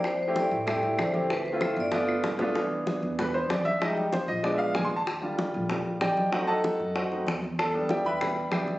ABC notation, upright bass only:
X:1
M:4/4
L:1/8
Q:1/4=191
K:C
V:1 name="Upright bass" clef=bass
F,,3 A,,3 D,,2- | D,,3 G,,,3 C,,2- | C,,3 E,,3 F,,2- | F,,3 _B,,,3 _E,,2- |
_E,,3 _B,,,3 =B,,,2- | B,,,3 ^F,,3 E,,2- | E,,3 E,,3 D,,2 |]